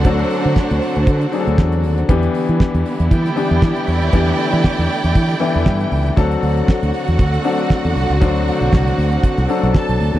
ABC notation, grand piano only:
X:1
M:4/4
L:1/8
Q:"Swing 16ths" 1/4=118
K:Dmix
V:1 name="Grand piano"
[F,CDA]3 z2 [F,CD^GA]2 z | [E,B,DG]3 z2 [E,B,DG]2 z | [E,B,DG]3 z2 [E,B,DE]2 z | [F,CDA]3 z2 [F,CDA]2 z |
[F,CDc]3 z2 [F,CDA]2 z |]